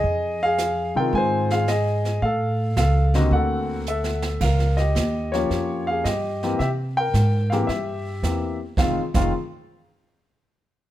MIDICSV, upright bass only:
0, 0, Header, 1, 2, 480
1, 0, Start_track
1, 0, Tempo, 545951
1, 34, Time_signature, 4, 2, 24, 8
1, 9591, End_track
2, 0, Start_track
2, 0, Title_t, "Upright bass"
2, 0, Program_c, 0, 32
2, 31, Note_on_c, 0, 41, 80
2, 805, Note_off_c, 0, 41, 0
2, 836, Note_on_c, 0, 48, 70
2, 980, Note_off_c, 0, 48, 0
2, 991, Note_on_c, 0, 44, 92
2, 1917, Note_off_c, 0, 44, 0
2, 1952, Note_on_c, 0, 45, 78
2, 2399, Note_off_c, 0, 45, 0
2, 2431, Note_on_c, 0, 37, 83
2, 2878, Note_off_c, 0, 37, 0
2, 2910, Note_on_c, 0, 38, 89
2, 3836, Note_off_c, 0, 38, 0
2, 3873, Note_on_c, 0, 37, 76
2, 4339, Note_off_c, 0, 37, 0
2, 4353, Note_on_c, 0, 39, 98
2, 4819, Note_off_c, 0, 39, 0
2, 4836, Note_on_c, 0, 41, 75
2, 5300, Note_off_c, 0, 41, 0
2, 5316, Note_on_c, 0, 43, 83
2, 5780, Note_off_c, 0, 43, 0
2, 5798, Note_on_c, 0, 48, 77
2, 6261, Note_off_c, 0, 48, 0
2, 6273, Note_on_c, 0, 44, 94
2, 6739, Note_off_c, 0, 44, 0
2, 6755, Note_on_c, 0, 43, 76
2, 7220, Note_off_c, 0, 43, 0
2, 7231, Note_on_c, 0, 40, 76
2, 7697, Note_off_c, 0, 40, 0
2, 7710, Note_on_c, 0, 29, 69
2, 7894, Note_off_c, 0, 29, 0
2, 8036, Note_on_c, 0, 29, 75
2, 8179, Note_off_c, 0, 29, 0
2, 9591, End_track
0, 0, End_of_file